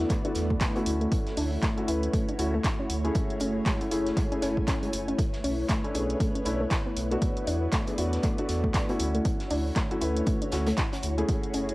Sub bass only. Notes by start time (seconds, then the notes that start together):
0.35 E2
0.86 D2
1.37 D2
1.88 D2
2.39 D2
2.90 D2
3.40 F#1
3.91 F#1
4.42 F#1
4.93 F#1
5.44 B1
5.95 B1
6.45 B1
6.96 B1
7.47 E2
7.98 E2
8.49 E2
9.00 D2
9.50 D2
10.01 D2
10.52 D2
11.03 D2
11.54 F#1